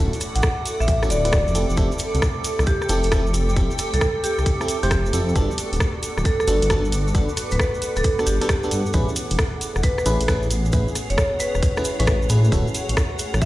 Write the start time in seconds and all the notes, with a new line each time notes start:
Already playing: C#4 E4 F#4 A4 F#5 D6
0.00 D1 C#4 E4 F#4 A4
0.13 closed hi-hat, shaker
0.20 cross-stick, closed hi-hat, shaker
0.35 A1 F#5, closed hi-hat, shaker
0.42 F#5, kick, cross-stick, shaker
0.66 closed hi-hat, shaker
0.80 A1 E5, cross-stick, shaker
0.88 E5, kick, closed hi-hat, shaker
1.03 C#4 E4 F#4 A4, cross-stick, shaker
1.10 D1 D5, closed hi-hat, shaker
1.25 C#4 E4 F#4 B4 D5, cross-stick, closed hi-hat, shaker
1.32 kick, cross-stick, closed hi-hat, shaker
1.47 F1, shaker
1.55 C4 E4 G4 A4, closed hi-hat, shaker
1.69 F1 G5, shaker
1.77 F1 C4 E4 G4 A4, kick, closed hi-hat, shaker
1.92 shaker
1.98 closed hi-hat, shaker
2.14 C2, closed hi-hat, shaker
2.22 kick, cross-stick, shaker
2.44 closed hi-hat, shaker
2.59 C2, cross-stick, shaker
2.66 G4, kick, closed hi-hat, shaker
2.82 G4, cross-stick, shaker
2.89 F1 C4 E4 G4 A4, closed hi-hat, shaker
3.03 F1, closed hi-hat, shaker
3.12 C4 E4 G4 A4, kick, cross-stick, closed hi-hat, shaker
3.27 shaker
3.34 closed hi-hat, shaker
3.49 shaker
3.56 F1 C4 E4 G4 A4, kick, closed hi-hat, shaker
3.71 shaker
3.78 cross-stick, closed hi-hat, shaker
3.94 C2 A4, closed hi-hat, shaker
4.01 A4, kick, cross-stick, shaker
4.24 G4, closed hi-hat, shaker
4.38 C2, cross-stick, shaker
4.46 kick, closed hi-hat, shaker
4.61 C4 E4 G4 A4, cross-stick, shaker
4.68 closed hi-hat, shaker
4.83 F1 C4 E4 G4 C5, closed hi-hat, shaker
4.91 kick, cross-stick, closed hi-hat, shaker
5.06 shaker
5.13 F2 C4 E4 G4 A4, closed hi-hat, shaker
5.29 shaker
5.36 G1 B3 D4 F#4 A4, kick, closed hi-hat, shaker
5.51 shaker
5.58 closed hi-hat, shaker
5.73 D1, closed hi-hat, shaker
5.80 kick, cross-stick, shaker
6.03 closed hi-hat, shaker
6.17 D1, cross-stick, shaker
6.25 A4, kick, closed hi-hat, shaker
6.40 A4, cross-stick, shaker
6.48 G1 B3 D4 F#4 A4, closed hi-hat, shaker
6.57 F#5
6.62 G1, closed hi-hat, shaker
6.70 B3 D4 F#4 A4, kick, cross-stick, closed hi-hat, shaker
6.85 shaker
6.92 closed hi-hat, shaker
7.07 shaker
7.15 G1 B3 D4 F#4 A4 B4, kick, closed hi-hat, shaker
7.29 shaker
7.37 cross-stick, closed hi-hat, shaker
7.51 D1 B4, closed hi-hat, shaker
7.59 B4, kick, cross-stick, shaker
7.74 shaker
7.82 closed hi-hat, shaker
7.96 D1 A4, cross-stick, closed hi-hat, shaker
8.04 A4, kick, closed hi-hat, shaker
8.19 B3 D4 F#4 A4, cross-stick, shaker
8.26 G1 G4, closed hi-hat, shaker
8.41 B3 D4 F#4 G4 A4, cross-stick, closed hi-hat, shaker
8.49 kick, cross-stick, closed hi-hat, shaker
8.63 B3 D4 F#4 A4, shaker
8.71 G2, closed hi-hat, shaker
8.86 shaker
8.93 A1 C#4 E4 G#4 B4, kick, closed hi-hat, shaker
9.09 shaker
9.16 closed hi-hat, shaker
9.31 E1, closed hi-hat, shaker
9.38 kick, cross-stick, shaker
9.47 C#5
9.61 closed hi-hat, shaker
9.76 E1, cross-stick, shaker
9.83 B4, kick, closed hi-hat, shaker
9.98 B4, cross-stick, shaker
10.06 A1 C#4 E4 G#4 B4, closed hi-hat, shaker
10.20 A1, closed hi-hat, shaker
10.28 C#4 E4 G#4 B4, kick, cross-stick, closed hi-hat, shaker
10.43 shaker
10.51 closed hi-hat, shaker
10.65 shaker
10.72 A1 C#4 E4 F#4 G#4 B4, kick, closed hi-hat, shaker
10.88 shaker
10.95 cross-stick, closed hi-hat, shaker
11.10 E1 C#5, closed hi-hat, shaker
11.17 C#5, kick, cross-stick, shaker
11.40 B4, closed hi-hat, shaker
11.55 E1, cross-stick, shaker
11.63 kick, closed hi-hat, shaker
11.77 C#4 E4 G#4 B4, cross-stick, shaker
11.85 closed hi-hat, shaker
11.99 A1 C#4 E4 G#4 B4 C#5, closed hi-hat, shaker
12.07 kick, cross-stick, closed hi-hat, shaker
12.22 shaker
12.29 A2 C#4 E4 G#4 B4, closed hi-hat, shaker
12.44 shaker
12.52 D1 A3 C#4 E4 F#4 A4, kick, closed hi-hat, shaker
12.68 shaker
12.75 closed hi-hat, shaker
12.89 A1, closed hi-hat, shaker
12.97 kick, cross-stick, shaker
13.19 closed hi-hat, shaker
13.34 A1, cross-stick, shaker
13.42 E5, kick, closed hi-hat, shaker